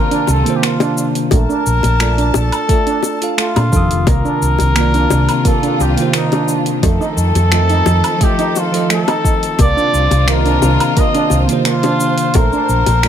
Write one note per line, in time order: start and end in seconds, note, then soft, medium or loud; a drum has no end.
0.00 0.40 C3 medium
0.00 1.29 C3 medium
0.00 0.42 D#3 medium
0.00 1.27 D#3 medium
0.00 0.41 A#3 medium
0.00 0.43 F4 medium
0.00 1.29 F4 loud
0.00 0.33 A#4 loud
0.00 0.44 D5 medium
0.11 0.20 D4 loud
0.11 open hi-hat soft
0.11 cabasa soft
0.27 0.42 C2 medium
0.27 0.58 A4 loud
0.27 high bongo medium
0.27 cabasa medium
0.43 1.28 C3 medium
0.43 1.30 D#3 medium
0.43 1.29 A#3 medium
0.43 open hi-hat soft
0.43 cabasa soft
0.48 1.31 F4 medium
0.48 1.31 C5 medium
0.56 0.66 G4 medium
0.62 0.79 A#3 medium
0.62 1.06 F4 loud
0.62 finger snap loud
0.62 open hi-hat medium
0.62 cabasa soft
0.80 0.95 D4 loud
0.80 open hi-hat soft
0.80 high bongo loud
0.80 cabasa soft
0.97 1.13 D4 medium
0.97 cabasa medium
1.15 open hi-hat soft
1.15 cabasa soft
1.31 1.45 A#1 medium
1.31 1.48 A3 loud
1.31 2.32 A#4 loud
1.31 4.05 A5 medium
1.31 kick loud
1.31 open hi-hat medium
1.31 high bongo medium
1.31 cabasa soft
1.49 1.58 D4 loud
1.49 cabasa soft
1.66 1.80 A#1 medium
1.66 cabasa medium
1.83 2.29 A#1 medium
1.83 open hi-hat soft
1.83 high bongo medium
1.83 cabasa soft
2.00 2.16 A3 medium
2.00 2.65 F4 medium
2.00 2.66 D5 medium
2.00 2.66 A5 medium
2.00 finger snap medium
2.00 open hi-hat medium
2.00 cabasa soft
2.18 2.33 D4 loud
2.18 open hi-hat soft
2.18 cabasa soft
2.34 2.49 A#1 medium
2.34 2.51 D4 medium
2.34 3.35 A4 loud
2.34 high bongo loud
2.34 cabasa medium
2.52 open hi-hat soft
2.52 cabasa soft
2.52 low woodblock medium
2.69 2.85 A3 loud
2.69 3.17 F4 medium
2.69 3.18 A4 medium
2.69 3.19 D5 medium
2.69 kick loud
2.69 open hi-hat medium
2.69 cabasa soft
2.87 2.96 D4 loud
2.87 open hi-hat soft
2.87 cabasa soft
3.03 high bongo medium
3.03 cabasa medium
3.22 3.69 F4 medium
3.22 3.69 A4 medium
3.22 3.70 F5 medium
3.22 open hi-hat soft
3.22 cabasa soft
3.38 3.54 A3 medium
3.38 4.04 F4 loud
3.38 finger snap loud
3.38 open hi-hat medium
3.38 cabasa soft
3.56 3.69 A#2 medium
3.56 3.71 D4 medium
3.56 open hi-hat soft
3.56 high bongo medium
3.56 cabasa soft
3.56 low woodblock medium
3.69 3.87 F2 medium
3.69 4.71 C3 loud
3.69 4.73 D#3 medium
3.69 3.90 A4 medium
3.69 kick loud
3.69 cabasa medium
3.75 4.73 F4 medium
3.75 4.74 D#6 loud
3.91 4.04 F1 medium
3.91 open hi-hat soft
3.91 cabasa soft
4.07 4.21 C2 loud
4.07 6.81 C3 medium
4.07 12.31 D#3 medium
4.07 4.23 A#3 loud
4.07 6.80 F4 medium
4.07 5.49 A#4 loud
4.07 kick loud
4.07 open hi-hat soft
4.07 high bongo loud
4.07 cabasa soft
4.25 4.34 D4 loud
4.25 cabasa soft
4.42 4.56 C2 medium
4.42 cabasa medium
4.59 5.05 C2 medium
4.59 open hi-hat soft
4.59 high bongo medium
4.59 cabasa soft
4.73 5.92 C3 medium
4.73 5.94 D#3 medium
4.73 5.93 A#3 medium
4.73 4.92 A#3 medium
4.73 finger snap medium
4.73 open hi-hat medium
4.73 cabasa soft
4.79 5.95 F4 medium
4.79 5.96 D5 medium
4.94 5.09 D4 loud
4.94 open hi-hat soft
4.94 cabasa soft
5.10 5.25 C2 medium
5.10 5.27 D4 medium
5.10 high bongo loud
5.10 cabasa medium
5.29 open hi-hat soft
5.29 cabasa soft
5.29 low woodblock medium
5.45 5.61 A#3 loud
5.45 5.83 A4 loud
5.45 kick loud
5.45 open hi-hat medium
5.45 cabasa soft
5.63 5.72 D4 loud
5.63 open hi-hat soft
5.63 cabasa soft
5.80 5.94 C2 medium
5.80 6.15 G4 medium
5.80 high bongo medium
5.80 cabasa medium
5.95 6.80 C3 medium
5.95 6.82 D#3 medium
5.95 6.81 A#3 medium
5.95 open hi-hat soft
5.95 cabasa soft
6.00 6.83 F4 medium
6.00 6.83 C5 medium
6.13 6.30 A#3 medium
6.13 6.55 D#4 loud
6.13 finger snap loud
6.13 open hi-hat medium
6.13 cabasa soft
6.32 6.47 D4 medium
6.32 open hi-hat soft
6.32 high bongo medium
6.32 cabasa soft
6.48 6.65 D4 medium
6.48 cabasa medium
6.66 open hi-hat soft
6.66 cabasa soft
6.83 6.97 F2 loud
6.83 9.56 F3 medium
6.83 6.99 A3 loud
6.83 9.57 C4 medium
6.83 9.57 A4 medium
6.83 8.25 A4 loud
6.83 kick loud
6.83 open hi-hat medium
6.83 high bongo medium
6.83 cabasa soft
7.01 7.10 D#4 loud
7.01 cabasa soft
7.17 7.31 F2 medium
7.17 cabasa medium
7.35 7.80 F2 medium
7.35 open hi-hat soft
7.35 high bongo medium
7.35 cabasa soft
7.51 8.17 F3 medium
7.51 7.68 A3 medium
7.51 8.17 F4 medium
7.51 8.18 A4 medium
7.51 8.18 D#5 medium
7.51 finger snap medium
7.51 open hi-hat medium
7.51 cabasa soft
7.70 7.85 D#4 loud
7.70 open hi-hat soft
7.70 cabasa soft
7.86 8.00 F2 medium
7.86 8.03 D#4 medium
7.86 high bongo loud
7.86 cabasa medium
8.04 open hi-hat soft
8.04 cabasa soft
8.04 low woodblock medium
8.19 8.68 F3 medium
8.19 8.37 A3 loud
8.19 8.69 F4 medium
8.19 8.70 A4 medium
8.19 8.70 D#5 medium
8.19 kick loud
8.19 open hi-hat medium
8.19 cabasa soft
8.24 8.59 G4 loud
8.39 8.48 D#4 loud
8.39 open hi-hat soft
8.39 cabasa soft
8.56 8.91 F4 medium
8.56 high bongo medium
8.56 cabasa medium
8.72 9.03 F3 medium
8.72 9.04 F4 medium
8.72 9.04 A4 medium
8.72 9.05 D#5 loud
8.72 open hi-hat soft
8.72 cabasa soft
8.90 9.06 A3 medium
8.90 9.56 A4 loud
8.90 finger snap medium
8.90 open hi-hat medium
8.90 cabasa soft
9.08 9.23 D#4 loud
9.08 open hi-hat soft
9.08 high bongo medium
9.08 cabasa soft
9.08 low woodblock medium
9.24 9.41 D#4 medium
9.24 kick loud
9.24 cabasa medium
9.43 open hi-hat soft
9.43 cabasa soft
9.59 9.73 C2 loud
9.59 12.33 C3 medium
9.59 9.75 A#3 loud
9.59 12.33 F4 loud
9.59 13.08 C5 medium
9.59 10.25 D5 loud
9.59 kick loud
9.59 open hi-hat medium
9.59 high bongo medium
9.59 cabasa soft
9.77 9.86 D4 loud
9.77 cabasa soft
9.93 10.07 C2 medium
9.93 cabasa medium
10.11 10.56 C2 medium
10.11 open hi-hat soft
10.11 high bongo medium
10.11 cabasa soft
10.25 11.44 C3 medium
10.25 11.46 D#3 medium
10.25 11.45 A#3 medium
10.25 10.44 A#3 medium
10.25 finger snap loud
10.25 open hi-hat medium
10.25 cabasa soft
10.30 11.46 F4 medium
10.30 11.01 A#4 loud
10.30 11.47 D#5 medium
10.46 10.61 D4 loud
10.46 open hi-hat soft
10.46 cabasa soft
10.62 10.76 C2 medium
10.62 10.78 D4 medium
10.62 high bongo medium
10.62 cabasa medium
10.80 open hi-hat soft
10.80 cabasa soft
10.80 low woodblock medium
10.97 11.13 A#3 loud
10.97 11.40 D#5 loud
10.97 kick loud
10.97 open hi-hat medium
10.97 cabasa soft
11.15 11.24 D4 loud
11.15 open hi-hat soft
11.15 cabasa soft
11.30 11.45 C2 medium
11.30 high bongo medium
11.30 cabasa medium
11.45 12.31 C3 medium
11.45 12.33 D#3 medium
11.45 12.32 A#3 medium
11.45 open hi-hat soft
11.49 12.34 F4 medium
11.49 12.35 C5 loud
11.49 cabasa soft
11.65 11.82 A#3 medium
11.65 12.37 F4 loud
11.65 finger snap loud
11.65 open hi-hat medium
11.65 cabasa soft
11.83 11.99 D4 loud
11.83 open hi-hat soft
11.83 high bongo medium
11.83 cabasa soft
12.00 12.16 D4 medium
12.00 cabasa medium
12.18 open hi-hat soft
12.18 cabasa soft
12.34 12.49 A#1 loud
12.34 12.51 A3 loud
12.34 13.08 A#4 loud
12.34 13.08 A5 medium
12.34 kick loud
12.34 open hi-hat medium
12.34 high bongo medium
12.34 cabasa soft
12.53 12.62 D4 loud
12.53 cabasa soft
12.69 12.83 A#1 medium
12.69 cabasa medium
12.86 13.08 A#1 medium
12.86 open hi-hat soft
12.86 high bongo medium
12.86 cabasa soft
13.03 13.08 A3 medium
13.03 13.08 F4 medium
13.03 13.08 A5 medium
13.03 finger snap loud
13.03 open hi-hat medium
13.03 cabasa soft